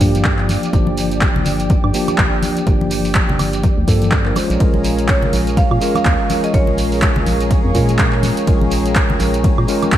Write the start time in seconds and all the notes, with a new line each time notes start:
Already playing: G4 A#4 D5 F5 G5 D6
0.00 G2 F3 A#3 D4 G4, kick, open hi-hat, shekere
0.15 closed hi-hat, high conga, shekere
0.24 kick, clap, shekere
0.39 clap
0.49 open hi-hat, high conga, shekere
0.63 closed hi-hat, shekere
0.73 G1 F3 A#3 D4 G4 G5, kick, closed hi-hat, shekere
0.87 high conga
0.98 open hi-hat, shekere
1.11 closed hi-hat, shekere
1.21 kick, clap, closed hi-hat, shekere
1.36 high conga, low conga
1.45 G1, open hi-hat, shekere
1.59 closed hi-hat, shekere
1.70 kick, closed hi-hat, high conga, shekere
1.84 G2, high woodblock
1.94 F3 A#3 D4 G4, open hi-hat, shekere
2.08 closed hi-hat, high conga, high woodblock, shekere
2.18 C2, kick, clap, shekere
2.42 open hi-hat, high conga, shekere
2.57 closed hi-hat, shekere
2.66 G1 F3 A#3 D4 G4, kick, closed hi-hat, shekere
2.81 high conga
2.91 open hi-hat, shekere
3.05 open hi-hat, shekere
3.15 kick, clap, closed hi-hat, shekere
3.29 high conga, low conga
3.39 G1, open hi-hat, high woodblock, shekere
3.53 closed hi-hat, shekere
3.63 kick, closed hi-hat, high conga, shekere
3.78 D2
3.88 G2 F3 A#3 D4 A4, kick, open hi-hat, shekere
4.02 closed hi-hat, high conga, shekere
4.11 kick, clap, shekere
4.26 F3 A#3 D4 A#4, clap
4.36 G#3 C#4 F4 G#4 A#4 C5 C#5 F5 A#5, open hi-hat, high conga, high woodblock, shekere
4.50 A#1, closed hi-hat, shekere
4.60 A#1 G#3 C#4 F4 G#4 A#4, kick, closed hi-hat, ride, shekere
4.64 F5
4.74 high conga
4.84 C#6, open hi-hat, shekere
4.98 closed hi-hat, shekere
5.08 C#5, kick, clap, closed hi-hat, ride, shekere
5.22 high conga, low conga
5.33 A#1, open hi-hat, shekere
5.47 closed hi-hat, shekere
5.57 F5, kick, closed hi-hat, ride, high conga, shekere
5.71 A#2, high woodblock
5.81 G#3 C#4 F4 A#4, open hi-hat, shekere
5.95 F5, closed hi-hat, high conga, high woodblock, shekere
6.05 D#2, kick, clap, ride, shekere
6.30 open hi-hat, high conga, shekere
6.44 D#5, closed hi-hat, shekere
6.53 A#1 G#3 C#4 F4 A#4 C#5, kick, closed hi-hat, ride, shekere
6.67 high conga
6.78 open hi-hat, shekere
6.92 open hi-hat, shekere
7.02 kick, clap, closed hi-hat, ride, shekere
7.16 high conga, low conga
7.26 A#1, open hi-hat, shekere
7.41 closed hi-hat, shekere
7.51 kick, closed hi-hat, ride, high conga, shekere
7.65 F2
7.74 A#2 G#3 C#4 F4 A#4, kick, open hi-hat, shekere
7.89 closed hi-hat, high conga, shekere
7.99 kick, clap, ride, shekere
8.13 clap
8.23 G5, open hi-hat, high conga, shekere
8.37 closed hi-hat, shekere
8.47 A#1 G#3 C#4 F4 A#4, kick, closed hi-hat, ride, shekere
8.61 high conga
8.71 open hi-hat, shekere
8.86 closed hi-hat, shekere
8.95 kick, clap, closed hi-hat, ride, shekere
9.10 high conga, low conga
9.20 A#1, open hi-hat, shekere
9.34 closed hi-hat, shekere
9.44 kick, closed hi-hat, ride, high conga, shekere
9.58 A#2, high woodblock
9.68 G#3 C#4 F4 A#4, open hi-hat, shekere
9.82 closed hi-hat, high conga, high woodblock, shekere
9.92 D#2, kick, clap, ride, shekere